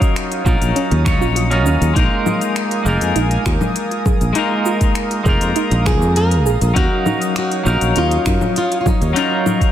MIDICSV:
0, 0, Header, 1, 7, 480
1, 0, Start_track
1, 0, Key_signature, -6, "minor"
1, 0, Tempo, 600000
1, 1570, Time_signature, 4, 2, 24, 8
1, 7775, End_track
2, 0, Start_track
2, 0, Title_t, "Analog synth pad"
2, 0, Program_c, 0, 89
2, 0, Note_on_c, 0, 73, 84
2, 0, Note_on_c, 0, 77, 77
2, 0, Note_on_c, 0, 87, 89
2, 1538, Note_off_c, 0, 77, 0
2, 1542, Note_off_c, 0, 73, 0
2, 1568, Note_on_c, 0, 70, 82
2, 1568, Note_on_c, 0, 80, 76
2, 1570, Note_on_c, 0, 77, 77
2, 3470, Note_off_c, 0, 80, 0
2, 3486, Note_on_c, 0, 82, 80
2, 5377, Note_off_c, 0, 70, 0
2, 5389, Note_off_c, 0, 82, 0
2, 5412, Note_on_c, 0, 73, 85
2, 7302, Note_off_c, 0, 87, 0
2, 7335, Note_on_c, 0, 85, 96
2, 7775, Note_off_c, 0, 73, 0
2, 7775, Note_off_c, 0, 77, 0
2, 7775, Note_off_c, 0, 85, 0
2, 7775, End_track
3, 0, Start_track
3, 0, Title_t, "Nylon-string guitar"
3, 0, Program_c, 1, 24
3, 4690, Note_on_c, 1, 68, 100
3, 4932, Note_off_c, 1, 68, 0
3, 4935, Note_on_c, 1, 70, 109
3, 5412, Note_off_c, 1, 70, 0
3, 5416, Note_on_c, 1, 66, 113
3, 5897, Note_off_c, 1, 66, 0
3, 5906, Note_on_c, 1, 66, 95
3, 6382, Note_off_c, 1, 66, 0
3, 6385, Note_on_c, 1, 65, 104
3, 6852, Note_off_c, 1, 65, 0
3, 6862, Note_on_c, 1, 65, 95
3, 7029, Note_off_c, 1, 65, 0
3, 7046, Note_on_c, 1, 65, 61
3, 7095, Note_off_c, 1, 65, 0
3, 7105, Note_on_c, 1, 63, 78
3, 7775, Note_off_c, 1, 63, 0
3, 7775, End_track
4, 0, Start_track
4, 0, Title_t, "Synth arpeggio sound"
4, 0, Program_c, 2, 84
4, 368, Note_on_c, 2, 65, 75
4, 435, Note_off_c, 2, 65, 0
4, 606, Note_on_c, 2, 61, 84
4, 675, Note_off_c, 2, 61, 0
4, 969, Note_on_c, 2, 65, 73
4, 1076, Note_off_c, 2, 65, 0
4, 1085, Note_on_c, 2, 65, 77
4, 1198, Note_off_c, 2, 65, 0
4, 1329, Note_on_c, 2, 61, 79
4, 1440, Note_off_c, 2, 61, 0
4, 1567, Note_on_c, 2, 63, 80
4, 1635, Note_off_c, 2, 63, 0
4, 1808, Note_on_c, 2, 65, 75
4, 1920, Note_off_c, 2, 65, 0
4, 2288, Note_on_c, 2, 68, 79
4, 2356, Note_off_c, 2, 68, 0
4, 2526, Note_on_c, 2, 63, 78
4, 2595, Note_off_c, 2, 63, 0
4, 2766, Note_on_c, 2, 65, 75
4, 2879, Note_off_c, 2, 65, 0
4, 3246, Note_on_c, 2, 68, 80
4, 3314, Note_off_c, 2, 68, 0
4, 3484, Note_on_c, 2, 63, 88
4, 3554, Note_off_c, 2, 63, 0
4, 3726, Note_on_c, 2, 65, 73
4, 3839, Note_off_c, 2, 65, 0
4, 4208, Note_on_c, 2, 68, 76
4, 4275, Note_off_c, 2, 68, 0
4, 4448, Note_on_c, 2, 63, 86
4, 4516, Note_off_c, 2, 63, 0
4, 4688, Note_on_c, 2, 65, 77
4, 4800, Note_off_c, 2, 65, 0
4, 5168, Note_on_c, 2, 68, 74
4, 5236, Note_off_c, 2, 68, 0
4, 5408, Note_on_c, 2, 61, 82
4, 5476, Note_off_c, 2, 61, 0
4, 5647, Note_on_c, 2, 63, 69
4, 5759, Note_off_c, 2, 63, 0
4, 6126, Note_on_c, 2, 65, 82
4, 6194, Note_off_c, 2, 65, 0
4, 6369, Note_on_c, 2, 61, 82
4, 6436, Note_off_c, 2, 61, 0
4, 6608, Note_on_c, 2, 63, 78
4, 6720, Note_off_c, 2, 63, 0
4, 7086, Note_on_c, 2, 65, 78
4, 7154, Note_off_c, 2, 65, 0
4, 7329, Note_on_c, 2, 61, 78
4, 7396, Note_off_c, 2, 61, 0
4, 7568, Note_on_c, 2, 63, 77
4, 7680, Note_off_c, 2, 63, 0
4, 7775, End_track
5, 0, Start_track
5, 0, Title_t, "Clean electric guitar"
5, 0, Program_c, 3, 27
5, 0, Note_on_c, 3, 54, 94
5, 0, Note_on_c, 3, 61, 81
5, 0, Note_on_c, 3, 63, 81
5, 0, Note_on_c, 3, 65, 87
5, 0, Note_on_c, 3, 70, 105
5, 331, Note_off_c, 3, 54, 0
5, 336, Note_off_c, 3, 61, 0
5, 341, Note_off_c, 3, 63, 0
5, 347, Note_off_c, 3, 65, 0
5, 353, Note_off_c, 3, 70, 0
5, 359, Note_on_c, 3, 54, 71
5, 364, Note_on_c, 3, 61, 69
5, 371, Note_on_c, 3, 63, 63
5, 374, Note_on_c, 3, 65, 68
5, 382, Note_on_c, 3, 70, 86
5, 821, Note_off_c, 3, 54, 0
5, 825, Note_off_c, 3, 61, 0
5, 826, Note_off_c, 3, 63, 0
5, 829, Note_off_c, 3, 65, 0
5, 833, Note_off_c, 3, 70, 0
5, 839, Note_on_c, 3, 54, 84
5, 843, Note_on_c, 3, 61, 80
5, 849, Note_on_c, 3, 63, 79
5, 855, Note_on_c, 3, 65, 75
5, 861, Note_on_c, 3, 73, 95
5, 1178, Note_off_c, 3, 54, 0
5, 1180, Note_off_c, 3, 61, 0
5, 1183, Note_off_c, 3, 63, 0
5, 1186, Note_off_c, 3, 65, 0
5, 1189, Note_off_c, 3, 73, 0
5, 1202, Note_on_c, 3, 54, 82
5, 1206, Note_on_c, 3, 61, 77
5, 1212, Note_on_c, 3, 63, 74
5, 1218, Note_on_c, 3, 65, 74
5, 1223, Note_on_c, 3, 70, 92
5, 1536, Note_off_c, 3, 54, 0
5, 1538, Note_off_c, 3, 61, 0
5, 1542, Note_off_c, 3, 63, 0
5, 1545, Note_off_c, 3, 65, 0
5, 1547, Note_off_c, 3, 70, 0
5, 1549, Note_on_c, 3, 56, 92
5, 1562, Note_on_c, 3, 58, 86
5, 1571, Note_on_c, 3, 63, 86
5, 1582, Note_on_c, 3, 65, 90
5, 1593, Note_on_c, 3, 70, 100
5, 2252, Note_off_c, 3, 56, 0
5, 2258, Note_off_c, 3, 58, 0
5, 2263, Note_off_c, 3, 63, 0
5, 2268, Note_off_c, 3, 65, 0
5, 2268, Note_on_c, 3, 56, 69
5, 2274, Note_off_c, 3, 70, 0
5, 2281, Note_on_c, 3, 58, 69
5, 2290, Note_on_c, 3, 63, 67
5, 2301, Note_on_c, 3, 65, 69
5, 2312, Note_on_c, 3, 70, 82
5, 3451, Note_off_c, 3, 56, 0
5, 3457, Note_off_c, 3, 58, 0
5, 3462, Note_off_c, 3, 63, 0
5, 3463, Note_on_c, 3, 56, 94
5, 3467, Note_off_c, 3, 65, 0
5, 3473, Note_off_c, 3, 70, 0
5, 3475, Note_on_c, 3, 58, 86
5, 3485, Note_on_c, 3, 63, 89
5, 3498, Note_on_c, 3, 65, 84
5, 3508, Note_on_c, 3, 70, 104
5, 4169, Note_off_c, 3, 56, 0
5, 4174, Note_off_c, 3, 58, 0
5, 4180, Note_off_c, 3, 63, 0
5, 4186, Note_off_c, 3, 65, 0
5, 4188, Note_on_c, 3, 56, 76
5, 4191, Note_off_c, 3, 70, 0
5, 4197, Note_on_c, 3, 58, 74
5, 4210, Note_on_c, 3, 63, 68
5, 4222, Note_on_c, 3, 65, 70
5, 4232, Note_on_c, 3, 70, 79
5, 5371, Note_off_c, 3, 56, 0
5, 5376, Note_off_c, 3, 58, 0
5, 5382, Note_off_c, 3, 63, 0
5, 5388, Note_off_c, 3, 65, 0
5, 5389, Note_on_c, 3, 54, 96
5, 5393, Note_off_c, 3, 70, 0
5, 5398, Note_on_c, 3, 61, 89
5, 5410, Note_on_c, 3, 63, 88
5, 5420, Note_on_c, 3, 77, 86
5, 5431, Note_on_c, 3, 70, 105
5, 6092, Note_off_c, 3, 54, 0
5, 6096, Note_off_c, 3, 61, 0
5, 6102, Note_off_c, 3, 63, 0
5, 6107, Note_off_c, 3, 77, 0
5, 6107, Note_on_c, 3, 54, 73
5, 6113, Note_off_c, 3, 70, 0
5, 6120, Note_on_c, 3, 61, 70
5, 6131, Note_on_c, 3, 63, 69
5, 6142, Note_on_c, 3, 77, 71
5, 6154, Note_on_c, 3, 70, 82
5, 7291, Note_off_c, 3, 54, 0
5, 7297, Note_off_c, 3, 61, 0
5, 7302, Note_off_c, 3, 63, 0
5, 7305, Note_on_c, 3, 54, 95
5, 7308, Note_off_c, 3, 77, 0
5, 7314, Note_off_c, 3, 70, 0
5, 7314, Note_on_c, 3, 61, 87
5, 7326, Note_on_c, 3, 63, 88
5, 7336, Note_on_c, 3, 65, 89
5, 7348, Note_on_c, 3, 70, 106
5, 7775, Note_off_c, 3, 54, 0
5, 7775, Note_off_c, 3, 61, 0
5, 7775, Note_off_c, 3, 63, 0
5, 7775, Note_off_c, 3, 65, 0
5, 7775, Note_off_c, 3, 70, 0
5, 7775, End_track
6, 0, Start_track
6, 0, Title_t, "Fretless electric bass"
6, 0, Program_c, 4, 35
6, 369, Note_on_c, 4, 34, 104
6, 451, Note_off_c, 4, 34, 0
6, 494, Note_on_c, 4, 34, 81
6, 571, Note_off_c, 4, 34, 0
6, 732, Note_on_c, 4, 39, 98
6, 974, Note_off_c, 4, 39, 0
6, 974, Note_on_c, 4, 34, 87
6, 1330, Note_off_c, 4, 34, 0
6, 1330, Note_on_c, 4, 39, 91
6, 1412, Note_off_c, 4, 39, 0
6, 1451, Note_on_c, 4, 39, 84
6, 1530, Note_off_c, 4, 39, 0
6, 1569, Note_on_c, 4, 34, 99
6, 1651, Note_off_c, 4, 34, 0
6, 2288, Note_on_c, 4, 29, 104
6, 2371, Note_off_c, 4, 29, 0
6, 2410, Note_on_c, 4, 41, 78
6, 2489, Note_off_c, 4, 41, 0
6, 2526, Note_on_c, 4, 34, 77
6, 2689, Note_off_c, 4, 34, 0
6, 2767, Note_on_c, 4, 39, 86
6, 2850, Note_off_c, 4, 39, 0
6, 3370, Note_on_c, 4, 34, 81
6, 3449, Note_off_c, 4, 34, 0
6, 4209, Note_on_c, 4, 29, 107
6, 4291, Note_off_c, 4, 29, 0
6, 4331, Note_on_c, 4, 41, 78
6, 4410, Note_off_c, 4, 41, 0
6, 4572, Note_on_c, 4, 34, 98
6, 4812, Note_off_c, 4, 34, 0
6, 4812, Note_on_c, 4, 41, 94
6, 5170, Note_off_c, 4, 41, 0
6, 5170, Note_on_c, 4, 34, 89
6, 5252, Note_off_c, 4, 34, 0
6, 5293, Note_on_c, 4, 34, 86
6, 5371, Note_off_c, 4, 34, 0
6, 5409, Note_on_c, 4, 39, 101
6, 5491, Note_off_c, 4, 39, 0
6, 6131, Note_on_c, 4, 34, 112
6, 6212, Note_off_c, 4, 34, 0
6, 6254, Note_on_c, 4, 34, 79
6, 6331, Note_off_c, 4, 34, 0
6, 6371, Note_on_c, 4, 39, 78
6, 6532, Note_off_c, 4, 39, 0
6, 6608, Note_on_c, 4, 42, 91
6, 6691, Note_off_c, 4, 42, 0
6, 7211, Note_on_c, 4, 39, 90
6, 7290, Note_off_c, 4, 39, 0
6, 7775, End_track
7, 0, Start_track
7, 0, Title_t, "Drums"
7, 11, Note_on_c, 9, 36, 63
7, 14, Note_on_c, 9, 42, 27
7, 17, Note_on_c, 9, 69, 44
7, 91, Note_off_c, 9, 36, 0
7, 94, Note_off_c, 9, 42, 0
7, 97, Note_off_c, 9, 69, 0
7, 131, Note_on_c, 9, 26, 77
7, 131, Note_on_c, 9, 42, 63
7, 134, Note_on_c, 9, 69, 35
7, 211, Note_off_c, 9, 26, 0
7, 211, Note_off_c, 9, 42, 0
7, 214, Note_off_c, 9, 69, 0
7, 253, Note_on_c, 9, 42, 43
7, 333, Note_off_c, 9, 42, 0
7, 368, Note_on_c, 9, 36, 113
7, 372, Note_on_c, 9, 69, 81
7, 448, Note_off_c, 9, 36, 0
7, 452, Note_off_c, 9, 69, 0
7, 493, Note_on_c, 9, 42, 43
7, 496, Note_on_c, 9, 69, 48
7, 573, Note_off_c, 9, 42, 0
7, 576, Note_off_c, 9, 69, 0
7, 609, Note_on_c, 9, 42, 58
7, 612, Note_on_c, 9, 69, 33
7, 689, Note_off_c, 9, 42, 0
7, 692, Note_off_c, 9, 69, 0
7, 732, Note_on_c, 9, 42, 31
7, 812, Note_off_c, 9, 42, 0
7, 848, Note_on_c, 9, 36, 97
7, 849, Note_on_c, 9, 26, 77
7, 849, Note_on_c, 9, 64, 56
7, 852, Note_on_c, 9, 69, 78
7, 928, Note_off_c, 9, 36, 0
7, 929, Note_off_c, 9, 26, 0
7, 929, Note_off_c, 9, 64, 0
7, 932, Note_off_c, 9, 69, 0
7, 974, Note_on_c, 9, 69, 44
7, 1054, Note_off_c, 9, 69, 0
7, 1090, Note_on_c, 9, 42, 60
7, 1093, Note_on_c, 9, 69, 33
7, 1170, Note_off_c, 9, 42, 0
7, 1173, Note_off_c, 9, 69, 0
7, 1211, Note_on_c, 9, 42, 27
7, 1291, Note_off_c, 9, 42, 0
7, 1330, Note_on_c, 9, 69, 78
7, 1410, Note_off_c, 9, 69, 0
7, 1454, Note_on_c, 9, 42, 26
7, 1457, Note_on_c, 9, 69, 45
7, 1534, Note_off_c, 9, 42, 0
7, 1537, Note_off_c, 9, 69, 0
7, 1568, Note_on_c, 9, 36, 110
7, 1571, Note_on_c, 9, 42, 65
7, 1574, Note_on_c, 9, 69, 33
7, 1648, Note_off_c, 9, 36, 0
7, 1651, Note_off_c, 9, 42, 0
7, 1654, Note_off_c, 9, 69, 0
7, 1809, Note_on_c, 9, 64, 60
7, 1813, Note_on_c, 9, 69, 69
7, 1889, Note_off_c, 9, 64, 0
7, 1893, Note_off_c, 9, 69, 0
7, 1931, Note_on_c, 9, 42, 27
7, 1934, Note_on_c, 9, 69, 44
7, 2011, Note_off_c, 9, 42, 0
7, 2014, Note_off_c, 9, 69, 0
7, 2048, Note_on_c, 9, 26, 80
7, 2048, Note_on_c, 9, 42, 64
7, 2052, Note_on_c, 9, 69, 35
7, 2128, Note_off_c, 9, 26, 0
7, 2128, Note_off_c, 9, 42, 0
7, 2132, Note_off_c, 9, 69, 0
7, 2170, Note_on_c, 9, 42, 45
7, 2250, Note_off_c, 9, 42, 0
7, 2290, Note_on_c, 9, 69, 77
7, 2370, Note_off_c, 9, 69, 0
7, 2410, Note_on_c, 9, 42, 44
7, 2414, Note_on_c, 9, 69, 43
7, 2490, Note_off_c, 9, 42, 0
7, 2494, Note_off_c, 9, 69, 0
7, 2526, Note_on_c, 9, 42, 59
7, 2529, Note_on_c, 9, 69, 31
7, 2606, Note_off_c, 9, 42, 0
7, 2609, Note_off_c, 9, 69, 0
7, 2647, Note_on_c, 9, 42, 32
7, 2727, Note_off_c, 9, 42, 0
7, 2766, Note_on_c, 9, 26, 72
7, 2767, Note_on_c, 9, 36, 59
7, 2769, Note_on_c, 9, 69, 77
7, 2846, Note_off_c, 9, 26, 0
7, 2847, Note_off_c, 9, 36, 0
7, 2849, Note_off_c, 9, 69, 0
7, 2887, Note_on_c, 9, 64, 81
7, 2890, Note_on_c, 9, 69, 45
7, 2967, Note_off_c, 9, 64, 0
7, 2970, Note_off_c, 9, 69, 0
7, 3006, Note_on_c, 9, 42, 65
7, 3009, Note_on_c, 9, 69, 31
7, 3086, Note_off_c, 9, 42, 0
7, 3089, Note_off_c, 9, 69, 0
7, 3131, Note_on_c, 9, 42, 29
7, 3211, Note_off_c, 9, 42, 0
7, 3246, Note_on_c, 9, 36, 101
7, 3246, Note_on_c, 9, 64, 81
7, 3249, Note_on_c, 9, 69, 78
7, 3326, Note_off_c, 9, 36, 0
7, 3326, Note_off_c, 9, 64, 0
7, 3329, Note_off_c, 9, 69, 0
7, 3368, Note_on_c, 9, 42, 26
7, 3371, Note_on_c, 9, 69, 43
7, 3448, Note_off_c, 9, 42, 0
7, 3451, Note_off_c, 9, 69, 0
7, 3481, Note_on_c, 9, 42, 69
7, 3484, Note_on_c, 9, 69, 33
7, 3561, Note_off_c, 9, 42, 0
7, 3564, Note_off_c, 9, 69, 0
7, 3726, Note_on_c, 9, 69, 77
7, 3806, Note_off_c, 9, 69, 0
7, 3847, Note_on_c, 9, 42, 30
7, 3849, Note_on_c, 9, 36, 58
7, 3850, Note_on_c, 9, 69, 41
7, 3927, Note_off_c, 9, 42, 0
7, 3929, Note_off_c, 9, 36, 0
7, 3930, Note_off_c, 9, 69, 0
7, 3963, Note_on_c, 9, 26, 74
7, 3963, Note_on_c, 9, 42, 69
7, 3966, Note_on_c, 9, 69, 33
7, 4043, Note_off_c, 9, 26, 0
7, 4043, Note_off_c, 9, 42, 0
7, 4046, Note_off_c, 9, 69, 0
7, 4088, Note_on_c, 9, 42, 43
7, 4168, Note_off_c, 9, 42, 0
7, 4206, Note_on_c, 9, 36, 107
7, 4208, Note_on_c, 9, 69, 71
7, 4286, Note_off_c, 9, 36, 0
7, 4288, Note_off_c, 9, 69, 0
7, 4329, Note_on_c, 9, 42, 44
7, 4332, Note_on_c, 9, 69, 44
7, 4409, Note_off_c, 9, 42, 0
7, 4412, Note_off_c, 9, 69, 0
7, 4446, Note_on_c, 9, 42, 63
7, 4449, Note_on_c, 9, 69, 31
7, 4526, Note_off_c, 9, 42, 0
7, 4529, Note_off_c, 9, 69, 0
7, 4571, Note_on_c, 9, 42, 33
7, 4651, Note_off_c, 9, 42, 0
7, 4687, Note_on_c, 9, 36, 96
7, 4690, Note_on_c, 9, 26, 75
7, 4690, Note_on_c, 9, 64, 63
7, 4693, Note_on_c, 9, 69, 71
7, 4767, Note_off_c, 9, 36, 0
7, 4770, Note_off_c, 9, 26, 0
7, 4770, Note_off_c, 9, 64, 0
7, 4773, Note_off_c, 9, 69, 0
7, 4815, Note_on_c, 9, 69, 44
7, 4895, Note_off_c, 9, 69, 0
7, 4929, Note_on_c, 9, 42, 68
7, 4932, Note_on_c, 9, 69, 34
7, 5009, Note_off_c, 9, 42, 0
7, 5012, Note_off_c, 9, 69, 0
7, 5051, Note_on_c, 9, 42, 31
7, 5131, Note_off_c, 9, 42, 0
7, 5171, Note_on_c, 9, 69, 69
7, 5251, Note_off_c, 9, 69, 0
7, 5291, Note_on_c, 9, 42, 29
7, 5294, Note_on_c, 9, 69, 38
7, 5371, Note_off_c, 9, 42, 0
7, 5374, Note_off_c, 9, 69, 0
7, 5408, Note_on_c, 9, 36, 108
7, 5411, Note_on_c, 9, 42, 73
7, 5414, Note_on_c, 9, 69, 33
7, 5488, Note_off_c, 9, 36, 0
7, 5491, Note_off_c, 9, 42, 0
7, 5494, Note_off_c, 9, 69, 0
7, 5647, Note_on_c, 9, 64, 63
7, 5650, Note_on_c, 9, 69, 66
7, 5727, Note_off_c, 9, 64, 0
7, 5730, Note_off_c, 9, 69, 0
7, 5772, Note_on_c, 9, 42, 31
7, 5775, Note_on_c, 9, 69, 41
7, 5852, Note_off_c, 9, 42, 0
7, 5855, Note_off_c, 9, 69, 0
7, 5888, Note_on_c, 9, 26, 74
7, 5888, Note_on_c, 9, 42, 67
7, 5891, Note_on_c, 9, 69, 30
7, 5968, Note_off_c, 9, 26, 0
7, 5968, Note_off_c, 9, 42, 0
7, 5971, Note_off_c, 9, 69, 0
7, 6012, Note_on_c, 9, 42, 47
7, 6092, Note_off_c, 9, 42, 0
7, 6130, Note_on_c, 9, 69, 69
7, 6210, Note_off_c, 9, 69, 0
7, 6251, Note_on_c, 9, 42, 45
7, 6254, Note_on_c, 9, 69, 41
7, 6331, Note_off_c, 9, 42, 0
7, 6334, Note_off_c, 9, 69, 0
7, 6366, Note_on_c, 9, 42, 65
7, 6369, Note_on_c, 9, 69, 30
7, 6446, Note_off_c, 9, 42, 0
7, 6449, Note_off_c, 9, 69, 0
7, 6491, Note_on_c, 9, 42, 36
7, 6571, Note_off_c, 9, 42, 0
7, 6607, Note_on_c, 9, 26, 78
7, 6608, Note_on_c, 9, 36, 55
7, 6610, Note_on_c, 9, 69, 75
7, 6687, Note_off_c, 9, 26, 0
7, 6688, Note_off_c, 9, 36, 0
7, 6690, Note_off_c, 9, 69, 0
7, 6730, Note_on_c, 9, 64, 77
7, 6733, Note_on_c, 9, 69, 43
7, 6810, Note_off_c, 9, 64, 0
7, 6813, Note_off_c, 9, 69, 0
7, 6850, Note_on_c, 9, 42, 69
7, 6853, Note_on_c, 9, 69, 33
7, 6930, Note_off_c, 9, 42, 0
7, 6933, Note_off_c, 9, 69, 0
7, 6973, Note_on_c, 9, 42, 32
7, 7053, Note_off_c, 9, 42, 0
7, 7087, Note_on_c, 9, 36, 94
7, 7089, Note_on_c, 9, 64, 85
7, 7092, Note_on_c, 9, 69, 71
7, 7167, Note_off_c, 9, 36, 0
7, 7169, Note_off_c, 9, 64, 0
7, 7172, Note_off_c, 9, 69, 0
7, 7212, Note_on_c, 9, 42, 30
7, 7215, Note_on_c, 9, 69, 39
7, 7292, Note_off_c, 9, 42, 0
7, 7295, Note_off_c, 9, 69, 0
7, 7330, Note_on_c, 9, 42, 72
7, 7333, Note_on_c, 9, 69, 34
7, 7410, Note_off_c, 9, 42, 0
7, 7413, Note_off_c, 9, 69, 0
7, 7570, Note_on_c, 9, 64, 61
7, 7573, Note_on_c, 9, 69, 72
7, 7650, Note_off_c, 9, 64, 0
7, 7653, Note_off_c, 9, 69, 0
7, 7689, Note_on_c, 9, 36, 61
7, 7691, Note_on_c, 9, 42, 30
7, 7694, Note_on_c, 9, 69, 39
7, 7769, Note_off_c, 9, 36, 0
7, 7771, Note_off_c, 9, 42, 0
7, 7774, Note_off_c, 9, 69, 0
7, 7775, End_track
0, 0, End_of_file